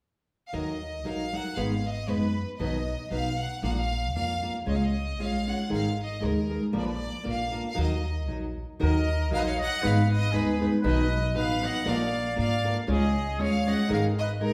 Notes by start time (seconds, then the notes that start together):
0.48 F5
0.53 D#2 D#3 F#3 D#4 F#4 A#4 D#5
1.04 A#1 F#3 D#4 F#4 A#4 F5
1.33 F#3 D#4 F#4 A#4 F#5
1.56 G#1 G#2 D#3 G#3 B3 D#4 B4 F5
1.87 D#5
2.07 F#2 G#3 B3 D#4 B4
2.59 B1 B2 D#3 F#3 B3 D#4 B4 D#5
3.11 B1 F#3 B3 D#4 B4 F5
3.40 F#5
3.63 A#1 A#2 F3 A#3 D4 F4 A#4 F5
3.70 F#5
3.78 F5
4.15 F2 A#3 D4 F4 A#4 F5
4.42 A#3 D4 F4 A#4
4.66 C#2 C#3 G#3 C#4 F4 C#5 D#5
4.75 F5
4.84 D#5
5.19 A#1 G#3 C#4 F4 C#5 F5
5.46 G#3 C#4 F4 C#5
5.51 F#5
5.69 G#1 G#2 D#3 G#3 D#4 G#4 A#4
5.74 F5
6.02 D#5
6.20 D#2 G#3 D#4 G#4 A#4
6.25 A#4
6.48 G#3 D#4 G#4 A#4
6.73 A#1 A#2 F3 A#3 D4 F4 A#4
6.78 D5
6.83 B4
6.91 D5
7.23 A#1 A#3 D4 F4 A#4
7.30 F5
7.51 A#3 D4 F4 A#4
7.70 F5
7.75 D#2 D#3 F#3 D#4 F#4 A#4
7.83 D#5
8.27 A#1 F#3 D#4 F#4 A#4
8.79 D#2 D#3 F#3 D#4 F#4 A#4 D#5
9.30 A#1 F#3 D#4 F#4 A#4 F5
9.37 B4 D#5
9.45 C#5 F5
9.59 D#5 F#5
9.82 G#1 G#2 D#3 G#3 B3 D#4 B4 F5
10.10 B4 D#5
10.32 D#2 G#3 B3 D#4 G#4 B4
10.36 B4
10.60 G#3 B3 D#4 B4
10.82 B1 B2 D#3 F#3 B3 D#4 B4
10.88 D#5
11.34 A1 F#3 B3 D#4 B4 F5
11.61 F#3 B3 D#4 B4 D#5
11.65 F#5
11.85 A#1 A#2 F3 A#3 D4 F4 A#4 F5
11.89 D5
12.35 G#2 A#3 D4 F4 A#4 D5 F5
12.64 A#3 D4 F4 A#4
12.87 C#2 C#3 G#3 C#4 F4 G#4 C#5
12.92 D#5
13.38 D#2 G#3 C#4 F4 C#5
13.43 F5
13.66 G#3 C#4 F4 C#5 D#5 F#5
13.88 G#1 G#2 D#3 G#3 D#4 G#4 A#4
13.93 A#4 F5
14.19 B4 D#5
14.40 A1 G#3 D#4 G#4 A#4